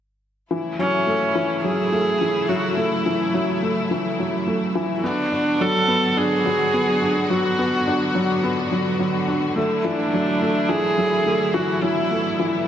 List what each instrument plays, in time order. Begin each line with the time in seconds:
0.51 string section C#3 F#3 A3 E4, felt piano E3
0.79 felt piano F#3, viola C#4
1.07 felt piano A3
1.35 felt piano E3
1.64 felt piano F#3, viola G#4
1.92 felt piano A3
2.21 felt piano E3
2.49 felt piano F#3, viola F#4
2.77 felt piano A3, viola E4
3.06 felt piano E3
3.34 felt piano F#3
3.63 felt piano A3
3.91 felt piano E3
4.19 felt piano F#3
4.47 felt piano A3
4.75 felt piano E3
4.96 viola E4
5.04 string section D3 B3 F#4, felt piano B3, viola D4
5.32 felt piano D4
5.60 felt piano F#3, viola A4
5.88 felt piano B3
6.17 felt piano D4, viola G#4
6.45 felt piano F#3
6.74 felt piano B3
7.01 felt piano D4
7.30 felt piano F#3, viola F#4
7.59 felt piano B3
7.87 felt piano D4
8.15 felt piano F#3
8.44 felt piano B3
8.72 felt piano F#3
8.99 felt piano F#3
9.28 felt piano D4
9.56 string section F#3 A3 E4, felt piano A3
9.85 felt piano E3, viola D4
10.13 felt piano F#3
10.42 felt piano A3
10.69 felt piano E3, viola G#4
10.98 felt piano F#3
11.26 felt piano A3
11.54 felt piano E3, viola F#4
11.82 felt piano F#3, string section B3, viola E4
12.11 felt piano A3
12.40 felt piano E3